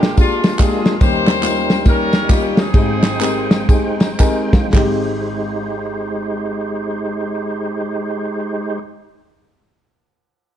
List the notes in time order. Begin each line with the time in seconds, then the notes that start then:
Already playing: A#1 A#2 G#3 A#3 D4 F4 G4 A#4
0.03 snare, ride, tambourine
0.17 G#3 A#3 D4 F4 G4, kick, ride, tambourine
0.44 snare, ride, tambourine
0.59 G#3 A#3 D4 F4 G4 G#4, kick, clap, ride, tambourine
0.85 snare, ride, tambourine
1.01 D#2 D#3 G3 A#3 C#4 D#4 G4 A#4 C5, kick, ride, tambourine
1.27 snare, clap, ride, tambourine
1.43 G3 A#3 C#4 D#4 F4, clap, ride, tambourine
1.70 snare, ride, tambourine
1.85 G3 A#3 C#4 D#4 G4 A#4, kick, ride, tambourine
2.13 snare, ride, tambourine
2.29 G3 A#3 C#4 D#4 F4 G4, kick, clap, ride, tambourine
2.57 C4 D#4 G#4, snare, ride, tambourine
2.74 G#1 G#2 G#3 C4 D#4 G4 G#4 C5 G5, kick, ride, tambourine
3.03 snare, clap, ride, tambourine
3.20 G#3 C4 D#4 G4 A#4, clap, ride, tambourine
3.51 snare, ride, tambourine
3.68 G#3 C4 D#4 G4 G#4, kick, ride, tambourine
4.00 A#5, snare, ride, tambourine
4.19 G#3 C4 D#4 G4 A#4 G#5, kick, clap, ride, tambourine
4.53 kick, snare, ride, tambourine
4.72 G#1 G#3 C4 D#4 G4 C5, kick, snare, clap, open hi-hat
4.76 G4